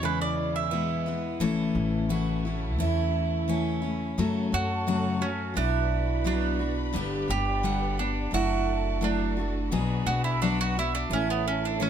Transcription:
0.02 E2 B2 C#3 E3 G#3 B3 E4 B4
0.22 D5
0.56 E5
0.72 E3 G#3 B3 E4
1.06 E3 G#3 B3 E4
1.40 A1 A2 C#3 E3 A3 C#4 E4 A4
1.75 A1
2.09 E3 A3 C#4 E4 F#4
2.45 A3 C#4 E4
2.79 E2 E3 A3 C#4 E4
3.48 E3 A3 C#4 E4
3.82 A3 C#4 E4
4.17 F#2 C#3 F#3 A3 C#4 F#4 A4 C#5 A5
4.52 F#2 F#3 A3 C#4 F#4
4.87 F#2 C#3 F#3 A3 C#4 F#4
5.21 F#3 A3 C#4 F#4
5.54 B1 F#3 B3 D4 E4 F#4 B4 D5 B5
6.24 B2 F#3 B3 D4 F#4
6.59 B3 D4 F#4
6.93 G1 G2 D3 G3 B3 D4 G4
7.28 G1 G3 B3 D4 G4
7.63 G2 D3 G3 B3 D4 G4 F#5
7.98 G3 B3 D4 G4
8.31 F#1 F#3 A3 D4 E4 F#4 A4 A5
9.01 F#3 A3 D4 F#4
9.37 A3 D4 F#4
9.70 B1 B2 F#3 B3 D4 F#4 G#4 B4 D5 B5
10.06 B1 B3 D4 F#4
10.24 E4
10.42 B2 F#3 B3 D4 F#4
10.61 F#4
10.77 B3 D4 E4 F#4
10.95 D4
11.10 A1 E3 A3 C#4 E4 A4 C#5 A5
11.14 E4
11.30 B3
11.48 C#4
11.65 D4
11.80 A2 E3 A3 C#4 E4

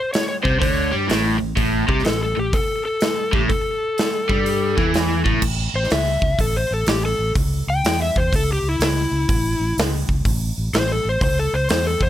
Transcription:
0.00 C5
0.13 C#5, snare, open hi-hat
0.29 C#5
0.43 C2 C3 C5, kick
0.59 D2 D3 C#5, kick, open hi-hat
0.92 G2 G3
1.08 A1 A2, snare, open hi-hat
1.39 A1 A2
1.56 A1 A2, kick, open hi-hat
1.87 C2 C3 G4, kick
1.99 snare
2.04 A1 A2 A4, snare, open hi-hat
2.23 A4
2.36 A1 A2 G4
2.53 A4, kick, open hi-hat
2.85 A4
3.01 snare, open hi-hat
3.32 A1 A2 G4, kick
3.49 A4, kick, open hi-hat
3.98 snare, open hi-hat
4.29 G2 G3, kick
4.46 open hi-hat
4.77 E2 E3, kick
4.94 snare, open hi-hat
5.25 A1 A2, kick
5.42 A1, kick, crash
5.74 A1 C5
5.84 snare
5.90 C#2 E5, snare, open hi-hat
6.22 C#2, kick
6.39 A1 A4, kick, open hi-hat
6.56 C5
6.71 A1 A4
6.86 A1 G4, snare, open hi-hat
7.06 A4
7.19 A1
7.35 C#2, kick, open hi-hat
7.67 C#2 G5
7.84 E2, snare, open hi-hat
8.02 E5
8.16 E2 C5, kick
8.33 C#2 A4, kick, open hi-hat
8.53 G4
8.62 C#2
8.69 E4
8.79 C#2, snare, open hi-hat
8.84 E4
9.11 C#2
9.29 A1, kick, open hi-hat
9.60 A1
9.78 C#2, snare, open hi-hat
10.09 C#2, kick
10.25 A1, kick, open hi-hat
10.58 A1
10.73 A1 C5, snare, open hi-hat
10.92 A4
11.05 A1
11.09 C5
11.21 C#2 C5, kick, open hi-hat
11.39 A4
11.53 C#2 C5
11.69 E2 C5, snare, open hi-hat
11.87 A4
12.01 E2 C5, kick

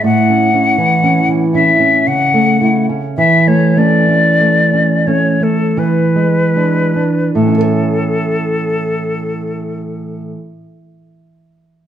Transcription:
0.04 A2 F#5
0.30 C#4
0.54 C#4 E4
0.78 E3
1.03 C#4
1.28 E3
1.54 C#4 E4 E5
1.80 C#4
2.07 C#3 F#5
2.34 A3
2.61 A3 E4
2.89 C#4
3.17 E3 E5
3.47 A3 C#5
3.77 A3 C#4 D5
4.08 C#4
4.40 A3
4.73 C#4
5.07 A3 C#4 C#5
5.41 A3 A4
5.77 E3 B4
6.16 G#3
6.56 G#3 D4
6.96 D4
7.34 A2 A4
7.41 E3
7.47 C#4
7.52 E4
7.58 A4
7.64 C#5

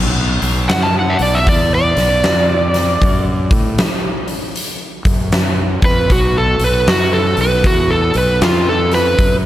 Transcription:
Already playing: B1
0.42 B1, open hi-hat
0.69 F#2 F#5, snare, open hi-hat
0.83 A5
0.99 F#5
1.10 E5
1.19 B1 D5, open hi-hat
1.35 E5
1.47 E2 D5, kick, open hi-hat
1.75 D5
1.97 B1, snare, open hi-hat
2.24 F2, snare, open hi-hat
2.74 snare, open hi-hat
3.01 F#2, kick, open hi-hat
3.51 A2, kick, open hi-hat
3.78 snare, open hi-hat
4.28 open hi-hat
4.56 open hi-hat
5.05 F#2, kick, open hi-hat
5.32 snare, open hi-hat
5.82 F2 B4, kick, open hi-hat
6.10 B1 F#4, kick, open hi-hat
6.37 A4
6.59 B1, open hi-hat
6.64 B4
6.87 F#2 F#4, snare, open hi-hat
7.13 A4
7.37 B1, open hi-hat
7.41 B4
7.64 E2 F#4, kick, open hi-hat
7.91 A4
8.14 B1 B4, open hi-hat
8.41 F2 F4, snare, open hi-hat
8.69 A4
8.92 B4, snare, open hi-hat
9.19 F#2, kick, open hi-hat

